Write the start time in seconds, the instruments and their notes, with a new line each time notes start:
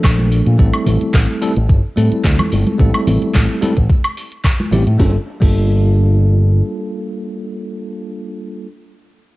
Already playing: tine electric piano F3 A3 A#3 D4 A4
0.04 fingered electric bass A#1, kick, clap, closed hi-hat, tambourine, high woodblock
0.19 high conga
0.32 open hi-hat, tambourine
0.46 fingered electric bass A#2, closed hi-hat, tambourine
0.58 fingered electric bass A1, tine electric piano G3 A3 C4 E4 A4, kick, closed hi-hat, tambourine
0.74 high woodblock
0.86 fingered electric bass A1, open hi-hat, tambourine, low conga
1.01 muted fingered electric bass stroke, closed hi-hat, tambourine
1.14 fingered electric bass A1, kick, clap, closed hi-hat, tambourine
1.29 tambourine
1.42 tine electric piano G3 A3 C4 E4 A4, open hi-hat, tambourine
1.56 fingered electric bass A1, closed hi-hat, tambourine
1.69 fingered electric bass G1, kick, closed hi-hat, tambourine
1.96 fingered electric bass A2, tine electric piano G3 A3 C4 E4 A4, open hi-hat, tambourine
2.11 muted fingered electric bass stroke, closed hi-hat, tambourine
2.24 fingered electric bass D2, kick, clap, closed hi-hat, tambourine
2.39 high conga, low conga, high woodblock
2.52 fingered electric bass G1, open hi-hat, tambourine
2.67 closed hi-hat, tambourine, high conga
2.78 fingered electric bass A1, tine electric piano G3 A3 C4 E4 A4, kick, closed hi-hat, tambourine
2.94 tambourine, high woodblock
3.07 fingered electric bass A1, open hi-hat, tambourine, low conga
3.22 muted fingered electric bass stroke, closed hi-hat, tambourine
3.34 fingered electric bass A1, kick, clap, closed hi-hat, tambourine, high conga
3.49 tambourine
3.61 tine electric piano G3 A3 C4 E4 A4, muted fingered electric bass stroke, open hi-hat, tambourine, high conga
3.76 fingered electric bass A1, kick, closed hi-hat, tambourine
3.89 kick, closed hi-hat, tambourine
4.03 tambourine, high woodblock
4.17 open hi-hat, tambourine
4.32 closed hi-hat, tambourine
4.45 kick, clap, closed hi-hat, tambourine, high woodblock
4.60 tambourine, high conga
4.72 fingered electric bass A1, tine electric piano G3 A3 C4 E4 G4, open hi-hat, tambourine, low conga
4.87 fingered electric bass A2, closed hi-hat, tambourine
4.98 fingered electric bass G1, tine electric piano G3 A#3 D4 F4 A4, kick, snare
5.40 fingered electric bass G1, tine electric piano G3 A#3 D4 F4 A4, kick, crash